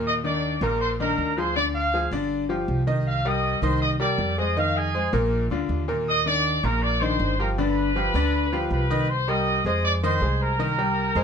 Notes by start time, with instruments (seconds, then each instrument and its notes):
Already playing: upright bass D#2, grand piano A#2 A#3 A#4
0.06 trumpet section D#5 D#6
0.24 grand piano D#3 D4 D#4, trumpet section D5 D6
0.61 upright bass A#1, grand piano A#2 A#3 A#4, trumpet section A#4 A#5
0.81 trumpet section C5 C6
1.00 grand piano D#3 D4 D#4, trumpet section A#4 A#5
1.18 upright bass D2
1.37 grand piano F3 F4 G#4, trumpet section C5 C6
1.56 grand piano D3 D4 D5, trumpet section D5 D6
1.75 trumpet section F5
1.94 grand piano F3 F4 G#4
2.11 upright bass G1, grand piano D3 D4 D5
2.49 grand piano F3 F4 G4
2.68 upright bass C2
2.87 grand piano D#3 D#4 D#5
3.08 trumpet section F5
3.25 grand piano G3 G4 A#4, trumpet section D#5 D#6
3.62 upright bass C2, grand piano D#3 D#4 D#5, trumpet section C5 C6
3.82 trumpet section D#5 D#6
4.00 grand piano G3 G4 A#4, trumpet section D5 D6
4.18 upright bass F2
4.38 grand piano G#3 G#4 C5, trumpet section D#5 D#6
4.57 grand piano D#3 D#4 D#5, trumpet section F5
4.77 trumpet section G#4 G#5
4.95 grand piano G#3 G#4 C5
5.13 upright bass A#1, grand piano A#2 A#3 A#4
5.50 upright bass D2, grand piano D3 D4 F4
5.69 upright bass D#2
5.88 grand piano A#2 A#3 A#4
6.08 trumpet section D#5 D#6
6.26 grand piano D#3 D4 D#4, trumpet section D5 D6
6.63 upright bass A#1, grand piano A#2 A#3 A#4, trumpet section A#4 A#5
6.82 trumpet section D5 D6
7.01 grand piano D#3 D4 D#4, trumpet section C5 C6
7.20 upright bass G1
7.39 grand piano F3 F4 G4, trumpet section A#4 A#5
7.58 grand piano D3 D4 D5, trumpet section B4 B5
7.96 grand piano F3 F4 G4
8.14 upright bass D2, grand piano D3 D4 D5
8.53 grand piano F3 F4 G4
8.71 upright bass C2, trumpet section B4 B5
8.90 grand piano D#3 D#4 D#5
9.09 trumpet section C5 C6
9.28 grand piano G3 G4 A#4, trumpet section D#5 D#6
9.65 upright bass F2, grand piano G#3 G#4 C5, trumpet section D#5 D#6
9.84 trumpet section D5 D6
10.03 grand piano D#3 D#4 D#5, trumpet section C5 C6
10.21 upright bass C2, grand piano G#3 G#4 C5
10.41 trumpet section A#4 A#5
10.59 grand piano D#3 D#4 D#5
10.78 grand piano G3 G4 A#4
11.15 upright bass F2, grand piano G#3 G#4 C5